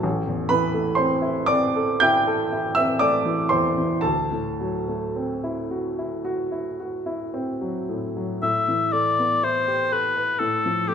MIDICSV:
0, 0, Header, 1, 3, 480
1, 0, Start_track
1, 0, Tempo, 936037
1, 21, Time_signature, 4, 2, 24, 8
1, 501, Tempo, 1020408
1, 1941, Tempo, 1098901
1, 3861, Tempo, 1006711
1, 4341, Tempo, 961538
1, 5092, End_track
2, 0, Start_track
2, 0, Title_t, "Oboe"
2, 0, Program_c, 0, 68
2, 3857, Note_on_c, 0, 76, 84
2, 4095, Note_on_c, 0, 74, 81
2, 4102, Note_off_c, 0, 76, 0
2, 4341, Note_on_c, 0, 72, 80
2, 4349, Note_off_c, 0, 74, 0
2, 4584, Note_on_c, 0, 71, 76
2, 4592, Note_off_c, 0, 72, 0
2, 4815, Note_on_c, 0, 69, 76
2, 4823, Note_off_c, 0, 71, 0
2, 5059, Note_on_c, 0, 67, 71
2, 5066, Note_off_c, 0, 69, 0
2, 5092, Note_off_c, 0, 67, 0
2, 5092, End_track
3, 0, Start_track
3, 0, Title_t, "Grand piano"
3, 0, Program_c, 1, 0
3, 0, Control_c, 1, 64, 127
3, 18, Note_on_c, 1, 33, 78
3, 29, Control_c, 1, 64, 0
3, 97, Control_c, 1, 64, 127
3, 139, Note_on_c, 1, 40, 59
3, 251, Note_on_c, 1, 83, 99
3, 253, Note_on_c, 1, 71, 75
3, 260, Note_on_c, 1, 52, 62
3, 330, Note_off_c, 1, 40, 0
3, 379, Note_on_c, 1, 57, 66
3, 453, Note_off_c, 1, 52, 0
3, 482, Note_off_c, 1, 71, 0
3, 488, Note_on_c, 1, 84, 94
3, 494, Note_on_c, 1, 72, 67
3, 498, Note_off_c, 1, 83, 0
3, 499, Note_on_c, 1, 60, 62
3, 571, Note_off_c, 1, 57, 0
3, 615, Note_on_c, 1, 64, 61
3, 691, Note_off_c, 1, 60, 0
3, 721, Note_off_c, 1, 72, 0
3, 730, Note_on_c, 1, 86, 110
3, 735, Note_on_c, 1, 74, 77
3, 736, Note_off_c, 1, 84, 0
3, 742, Note_on_c, 1, 60, 65
3, 815, Note_off_c, 1, 64, 0
3, 870, Note_on_c, 1, 69, 66
3, 940, Note_off_c, 1, 60, 0
3, 967, Note_off_c, 1, 74, 0
3, 982, Note_off_c, 1, 86, 0
3, 983, Note_on_c, 1, 91, 116
3, 989, Note_on_c, 1, 79, 99
3, 992, Note_on_c, 1, 64, 77
3, 1062, Note_off_c, 1, 69, 0
3, 1109, Note_on_c, 1, 69, 69
3, 1179, Note_off_c, 1, 64, 0
3, 1228, Note_on_c, 1, 64, 60
3, 1294, Note_off_c, 1, 69, 0
3, 1320, Note_off_c, 1, 79, 0
3, 1334, Note_on_c, 1, 88, 109
3, 1336, Note_off_c, 1, 91, 0
3, 1340, Note_on_c, 1, 76, 84
3, 1346, Note_on_c, 1, 60, 59
3, 1411, Note_off_c, 1, 64, 0
3, 1448, Note_off_c, 1, 76, 0
3, 1450, Note_on_c, 1, 86, 104
3, 1453, Note_off_c, 1, 88, 0
3, 1453, Note_on_c, 1, 74, 75
3, 1458, Note_on_c, 1, 57, 58
3, 1529, Note_off_c, 1, 60, 0
3, 1572, Note_on_c, 1, 52, 62
3, 1646, Note_off_c, 1, 57, 0
3, 1674, Note_off_c, 1, 74, 0
3, 1684, Note_on_c, 1, 84, 94
3, 1689, Note_off_c, 1, 86, 0
3, 1689, Note_on_c, 1, 72, 70
3, 1695, Note_on_c, 1, 40, 51
3, 1765, Note_off_c, 1, 52, 0
3, 1817, Note_on_c, 1, 52, 53
3, 1891, Note_off_c, 1, 40, 0
3, 1920, Note_off_c, 1, 33, 0
3, 1922, Note_off_c, 1, 72, 0
3, 1928, Note_on_c, 1, 81, 91
3, 1933, Note_on_c, 1, 69, 69
3, 1936, Note_off_c, 1, 84, 0
3, 1937, Note_on_c, 1, 38, 70
3, 1942, Note_off_c, 1, 52, 0
3, 1948, Control_c, 1, 64, 0
3, 2044, Control_c, 1, 64, 127
3, 2063, Note_on_c, 1, 45, 51
3, 2188, Note_on_c, 1, 54, 51
3, 2255, Note_off_c, 1, 45, 0
3, 2311, Note_on_c, 1, 57, 50
3, 2379, Note_off_c, 1, 54, 0
3, 2431, Note_on_c, 1, 60, 51
3, 2501, Note_off_c, 1, 57, 0
3, 2552, Note_on_c, 1, 64, 55
3, 2620, Note_off_c, 1, 60, 0
3, 2670, Note_on_c, 1, 66, 53
3, 2739, Note_off_c, 1, 64, 0
3, 2792, Note_on_c, 1, 64, 51
3, 2857, Note_off_c, 1, 66, 0
3, 2905, Note_on_c, 1, 66, 60
3, 2976, Note_off_c, 1, 64, 0
3, 3023, Note_on_c, 1, 64, 51
3, 3093, Note_off_c, 1, 66, 0
3, 3146, Note_on_c, 1, 66, 52
3, 3213, Note_off_c, 1, 64, 0
3, 3261, Note_on_c, 1, 64, 54
3, 3336, Note_off_c, 1, 66, 0
3, 3359, Note_off_c, 1, 69, 0
3, 3374, Note_off_c, 1, 81, 0
3, 3382, Note_on_c, 1, 60, 55
3, 3454, Note_off_c, 1, 64, 0
3, 3502, Note_on_c, 1, 54, 53
3, 3577, Note_off_c, 1, 60, 0
3, 3624, Note_on_c, 1, 45, 47
3, 3699, Note_off_c, 1, 54, 0
3, 3743, Note_on_c, 1, 54, 51
3, 3815, Note_off_c, 1, 45, 0
3, 3843, Note_off_c, 1, 38, 0
3, 3857, Note_on_c, 1, 45, 58
3, 3860, Note_off_c, 1, 54, 0
3, 3869, Control_c, 1, 64, 0
3, 3950, Control_c, 1, 64, 127
3, 3979, Note_on_c, 1, 52, 46
3, 4097, Note_on_c, 1, 57, 42
3, 4174, Note_off_c, 1, 52, 0
3, 4220, Note_on_c, 1, 59, 43
3, 4291, Note_off_c, 1, 57, 0
3, 4337, Note_on_c, 1, 64, 44
3, 4413, Note_off_c, 1, 59, 0
3, 4458, Note_on_c, 1, 67, 47
3, 4533, Note_off_c, 1, 64, 0
3, 4577, Note_on_c, 1, 69, 47
3, 4653, Note_off_c, 1, 67, 0
3, 4703, Note_on_c, 1, 71, 47
3, 4772, Note_off_c, 1, 69, 0
3, 4801, Note_off_c, 1, 45, 0
3, 4819, Note_on_c, 1, 45, 58
3, 4823, Note_off_c, 1, 71, 0
3, 4832, Control_c, 1, 64, 0
3, 4914, Control_c, 1, 64, 127
3, 4947, Note_on_c, 1, 53, 43
3, 5063, Note_on_c, 1, 57, 44
3, 5092, Note_off_c, 1, 45, 0
3, 5092, Note_off_c, 1, 53, 0
3, 5092, Note_off_c, 1, 57, 0
3, 5092, End_track
0, 0, End_of_file